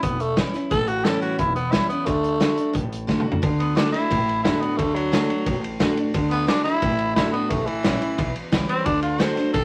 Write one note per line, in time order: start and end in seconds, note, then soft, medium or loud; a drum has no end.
0.03 0.38 E1 medium
0.03 0.67 E2 medium
0.03 0.23 B3 medium
0.03 kick loud
0.03 closed hi-hat loud
0.20 0.37 A3 loud
0.20 closed hi-hat medium
0.37 0.53 E3 medium
0.37 0.53 G3 medium
0.37 0.53 C#4 medium
0.37 0.53 E4 medium
0.37 kick medium
0.37 snare loud
0.37 closed hi-hat loud
0.54 0.71 C#4 soft
0.54 0.70 E4 medium
0.54 muted upright bass stroke medium
0.54 snare soft
0.54 closed hi-hat medium
0.71 1.07 A1 medium
0.71 1.35 A2 medium
0.71 0.90 A4 loud
0.71 kick loud
0.71 snare soft
0.71 closed hi-hat medium
0.88 1.06 F#4 medium
0.88 closed hi-hat medium
1.04 1.37 E3 medium
1.04 1.37 G3 medium
1.04 1.38 C#4 loud
1.04 1.38 E4 loud
1.04 1.21 A4 medium
1.04 snare loud
1.04 closed hi-hat medium
1.22 1.38 F#4 medium
1.22 muted upright bass stroke medium
1.22 closed hi-hat medium
1.38 1.74 E1 medium
1.38 2.04 E2 medium
1.38 1.55 E4 medium
1.38 kick loud
1.38 closed hi-hat medium
1.56 1.73 B3 medium
1.56 closed hi-hat medium
1.72 1.88 E3 medium
1.72 1.89 G3 medium
1.72 1.89 C#4 medium
1.72 1.88 E4 medium
1.72 1.89 E4 loud
1.72 kick medium
1.72 snare loud
1.72 closed hi-hat medium
1.89 2.07 B3 medium
1.89 2.07 C#4 soft
1.89 2.06 E4 medium
1.89 closed hi-hat medium
2.06 2.42 D2 loud
2.06 2.39 D3 medium
2.06 2.72 A3 loud
2.06 kick loud
2.06 snare soft
2.06 closed hi-hat medium
2.24 closed hi-hat medium
2.40 2.57 D3 loud
2.40 2.57 A3 medium
2.40 2.57 D4 medium
2.40 2.55 F#4 loud
2.40 snare loud
2.40 closed hi-hat medium
2.56 2.74 D4 soft
2.56 2.73 F#4 medium
2.56 muted upright bass stroke medium
2.56 closed hi-hat medium
2.73 3.10 A1 medium
2.73 3.39 A2 medium
2.73 kick loud
2.73 closed hi-hat medium
2.92 closed hi-hat medium
3.07 3.24 D3 medium
3.07 3.25 A3 medium
3.07 3.25 D4 medium
3.07 3.23 F#4 loud
3.07 kick medium
3.07 snare medium
3.20 mid tom medium
3.25 3.42 D4 soft
3.25 3.41 F#4 soft
3.25 muted upright bass stroke medium
3.32 floor tom medium
3.42 3.78 D2 loud
3.42 3.74 D3 medium
3.42 kick loud
3.42 ride medium
3.60 3.78 B3 medium
3.60 ride medium
3.75 3.92 D3 medium
3.75 3.93 A3 medium
3.75 3.92 D4 medium
3.75 3.93 D4 loud
3.75 3.92 F#4 loud
3.75 snare loud
3.75 ride medium
3.92 4.11 D4 soft
3.92 4.42 E4 medium
3.92 4.09 F#4 medium
3.92 muted upright bass stroke medium
3.92 snare soft
3.92 ride medium
4.11 4.46 A1 medium
4.11 4.75 A2 loud
4.11 kick loud
4.11 ride medium
4.29 ride medium
4.44 4.61 D3 medium
4.44 4.61 A3 medium
4.44 4.61 D4 loud
4.44 4.62 E4 medium
4.44 4.59 F#4 loud
4.44 kick medium
4.44 snare loud
4.44 ride medium
4.60 4.79 B3 medium
4.60 4.78 D4 soft
4.60 4.77 F#4 medium
4.60 muted upright bass stroke medium
4.60 ride medium
4.77 5.14 D2 medium
4.77 5.11 D3 medium
4.77 4.96 A3 medium
4.77 kick loud
4.77 ride medium
4.94 5.61 F#3 medium
4.94 ride medium
5.12 5.28 D3 medium
5.12 5.29 A3 loud
5.12 5.29 D4 loud
5.12 5.28 F#4 medium
5.12 snare loud
5.12 ride loud
5.29 5.47 D4 soft
5.29 5.46 F#4 medium
5.29 muted upright bass stroke medium
5.29 ride medium
5.46 5.82 A1 medium
5.46 6.11 A2 medium
5.46 kick loud
5.46 ride medium
5.64 ride medium
5.80 5.96 D3 medium
5.80 5.97 A3 loud
5.80 5.97 D4 loud
5.80 5.96 F#4 loud
5.80 kick medium
5.80 snare loud
5.80 ride medium
5.97 6.15 D4 soft
5.97 6.13 F#4 medium
5.97 muted upright bass stroke medium
5.97 ride medium
6.14 6.50 D2 loud
6.14 6.46 D3 medium
6.14 kick loud
6.14 ride medium
6.31 6.48 B3 medium
6.31 ride medium
6.47 6.64 D3 loud
6.47 6.64 A3 medium
6.47 6.64 D4 medium
6.47 6.65 D4 medium
6.47 6.62 F#4 loud
6.47 snare loud
6.47 ride medium
6.63 6.82 D4 medium
6.63 7.14 E4 loud
6.63 6.81 F#4 medium
6.63 muted upright bass stroke medium
6.63 snare soft
6.63 ride medium
6.82 7.18 A1 medium
6.82 7.47 A2 loud
6.82 kick loud
6.82 ride medium
6.98 ride medium
7.16 7.33 D3 loud
7.16 7.33 A3 medium
7.16 7.34 D4 loud
7.16 7.32 E4 medium
7.16 7.31 F#4 loud
7.16 kick medium
7.16 snare loud
7.16 ride medium
7.32 7.51 B3 medium
7.32 7.50 D4 soft
7.32 7.49 F#4 medium
7.32 muted upright bass stroke medium
7.32 ride soft
7.50 7.62 A1 loud
7.50 8.15 A2 medium
7.50 7.68 A3 medium
7.50 kick loud
7.50 ride medium
7.66 8.33 E3 medium
7.66 muted upright bass stroke medium
7.66 ride medium
7.83 7.99 A1 medium
7.83 8.00 E3 medium
7.83 8.01 G3 medium
7.83 8.01 C#4 medium
7.83 8.01 E4 loud
7.83 snare loud
7.83 ride medium
8.02 8.19 C#4 soft
8.02 8.18 E4 medium
8.02 ride medium
8.18 8.33 B1 medium
8.18 8.83 E2 medium
8.18 kick loud
8.18 ride medium
8.36 ride medium
8.52 8.67 C#2 medium
8.52 8.84 E3 medium
8.52 8.85 G3 medium
8.52 8.85 C#4 medium
8.52 8.86 E4 loud
8.52 kick medium
8.52 snare loud
8.52 ride medium
8.69 8.87 C4 medium
8.69 muted upright bass stroke medium
8.69 ride medium
8.86 9.22 D2 loud
8.86 9.17 D3 medium
8.86 9.02 D4 medium
8.86 kick loud
8.86 ride medium
9.02 9.22 F4 medium
9.02 ride medium
9.18 9.36 D3 medium
9.18 9.36 A3 medium
9.18 9.37 D4 medium
9.18 9.34 F#4 loud
9.18 9.53 C5 medium
9.18 snare loud
9.18 ride loud
9.36 9.54 D4 soft
9.36 9.53 F#4 medium
9.36 muted upright bass stroke medium
9.36 snare soft
9.36 ride medium
9.54 9.64 A1 medium
9.54 9.64 B2 medium
9.54 9.64 A4 medium
9.54 kick loud
9.54 ride medium